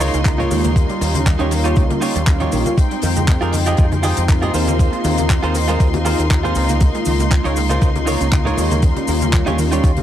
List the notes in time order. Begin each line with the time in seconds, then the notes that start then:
Already playing: G#3 A#3 D#4 F4 C6
0.00 D#3 D#4 F4 A#4 C#5, open hi-hat, tambourine, muted conga, cabasa
0.13 C#2 C#4, closed hi-hat, tambourine, cabasa
0.25 D#3 G#3 A#3 D#4 F4, kick, clap, closed hi-hat, tambourine, high conga, cabasa
0.38 G#3 D#4 F4 A#4 C#5, closed hi-hat, tambourine, low conga
0.51 D#2 D#3, open hi-hat, tambourine, muted conga, cabasa
0.64 A#3, closed hi-hat, tambourine, high conga, cabasa
0.75 D#3 G3 A#3 C#4 F4, kick, closed hi-hat, tambourine, cabasa
0.89 G3, closed hi-hat, tambourine, muted conga
1.01 D#2 D#3, open hi-hat, tambourine, cabasa
1.14 A#3, closed hi-hat, tambourine, high conga, cabasa
1.26 D#3, muted clean electric guitar stroke, kick, clap, closed hi-hat, tambourine, cabasa
1.39 D#2 C#4 D#4 F4 G4 C#5, closed hi-hat, tambourine, muted conga
1.51 D#3, open hi-hat, tambourine, cabasa
1.64 G3 D#4 F4 G4 C#5, closed hi-hat, tambourine, cabasa
1.76 C#2 D#3, kick, closed hi-hat, tambourine, muted conga, cabasa
1.90 A#3, closed hi-hat, tambourine, high conga
2.01 A#3 D#4 F4 G4 C#5, open hi-hat, tambourine, cabasa
2.15 D#2 G3, closed hi-hat, cabasa
2.26 G3 A#3 C#4 F4, kick, clap, closed hi-hat, tambourine, muted conga, high conga, cabasa
2.40 D#3 D#4 F4 G4 C#5, closed hi-hat, tambourine, low conga
2.52 A#1 D#3, open hi-hat, tambourine, cabasa
2.66 A#3, closed hi-hat, tambourine, muted conga, high conga, cabasa
2.77 D#3 G#3 C4 D#4 G5 C6, kick, closed hi-hat, tambourine, muted conga, cabasa
2.91 G3, closed hi-hat, tambourine
3.02 F2 D#3, open hi-hat, tambourine, cabasa
3.16 G#3, closed hi-hat, tambourine, high conga, cabasa
3.27 D#3, muted clean electric guitar stroke, kick, clap, closed hi-hat, tambourine, muted conga, cabasa
3.41 F2 C4 F4 G4 G#4 A#4, closed hi-hat, tambourine
3.53 D#3, open hi-hat, tambourine, high conga, cabasa
3.66 G3 F4 G4 G#4 D#5, closed hi-hat, tambourine, muted conga, cabasa
3.77 F2 D#3, kick, closed hi-hat, tambourine, cabasa
3.91 G#3, closed hi-hat, tambourine, high conga
4.03 D#3 F4 G4 G#4 D#5, open hi-hat, tambourine, cabasa
4.17 F2 C4, closed hi-hat, tambourine, muted conga, cabasa
4.28 D#3 A#3 C4 D#4 F4, kick, clap, closed hi-hat, tambourine, high conga, cabasa
4.42 G3 F4 G4 G#4 D#5, closed hi-hat, tambourine, low conga
4.53 D#2 D#3 F4 G#4 A#4 C5, open hi-hat, tambourine, muted conga, cabasa
4.67 A#3, closed hi-hat, tambourine, high conga, cabasa
4.78 D#3 A#3 C4 D#4 F4, kick, closed hi-hat, tambourine, cabasa
4.93 G#3, closed hi-hat, tambourine
5.04 D#2 D#3, open hi-hat, tambourine, muted conga, cabasa
5.18 A#3, closed hi-hat, tambourine, high conga, cabasa
5.29 D#3, muted clean electric guitar stroke, kick, clap, closed hi-hat, tambourine, cabasa
5.43 D#2 C4 F4 G#4 A#4 C5, closed hi-hat, tambourine, muted conga
5.55 D#3, open hi-hat, tambourine, cabasa
5.68 G#3 F4 G#4 A#4 C5, closed hi-hat, tambourine, cabasa
5.80 D#2 D#3, kick, closed hi-hat, tambourine, cabasa
5.93 A#3, closed hi-hat, tambourine, muted conga, high conga
6.05 D#3 F4 G#4 A#4 C5, open hi-hat, tambourine, cabasa
6.18 D#2 C4, closed hi-hat, tambourine, cabasa
6.30 D#3 A#3 C4 D#4 F4, kick, clap, closed hi-hat, tambourine, muted conga, high conga, cabasa
6.43 G#3 F4 G#4 A#4 C5, closed hi-hat, tambourine, low conga
6.55 C#2 D#3, open hi-hat, tambourine, cabasa
6.69 A#3, closed hi-hat, tambourine, high conga, cabasa
6.80 D#3 G#3 A#3 D#4 F4, kick, closed hi-hat, tambourine, muted conga, cabasa
6.94 G#3, closed hi-hat, tambourine
7.05 C#2 D#3, open hi-hat, tambourine, cabasa
7.19 A#3, closed hi-hat, tambourine, muted conga, high conga, cabasa
7.31 D#3, muted clean electric guitar stroke, kick, clap, closed hi-hat, tambourine, cabasa
7.44 C#2 C#4 D#4 F4 A#4 C#5, closed hi-hat, tambourine
7.56 D#3, open hi-hat, tambourine, high conga, cabasa
7.69 G#3 D#4 F4 A#4 C5, closed hi-hat, tambourine, muted conga, cabasa
7.81 C#2 D#3, kick, closed hi-hat, tambourine, cabasa
7.95 A#3, closed hi-hat, tambourine, high conga
8.06 D#3 D#4 F4 A#4 C#5, open hi-hat, tambourine, muted conga, cabasa
8.21 C#2 C#4, closed hi-hat, tambourine, cabasa
8.32 D#3 G#3 A#3 D#4 F4, kick, clap, closed hi-hat, tambourine, high conga, cabasa
8.45 G#3 D#4 F4 A#4 C#5, closed hi-hat, tambourine, low conga
8.57 D#2 D#3, open hi-hat, tambourine, muted conga, cabasa
8.70 A#3, closed hi-hat, tambourine, high conga, cabasa
8.82 D#3 G3 A#3 C#4 F4, kick, closed hi-hat, tambourine, cabasa
8.96 G3, closed hi-hat, tambourine, muted conga
9.08 D#2 D#3, open hi-hat, tambourine, cabasa
9.21 A#3, closed hi-hat, tambourine, high conga, cabasa
9.32 D#3, muted clean electric guitar stroke, kick, clap, closed hi-hat, tambourine, cabasa
9.46 D#2 C#4 D#4 F4 G4 C#5, closed hi-hat, tambourine, muted conga
9.58 D#3, open hi-hat, tambourine, cabasa
9.71 G3 D#4 F4 G4 C#5, closed hi-hat, tambourine, cabasa
9.83 D#2 D#3, kick, closed hi-hat, tambourine, muted conga, cabasa
9.97 A#3, closed hi-hat, tambourine, high conga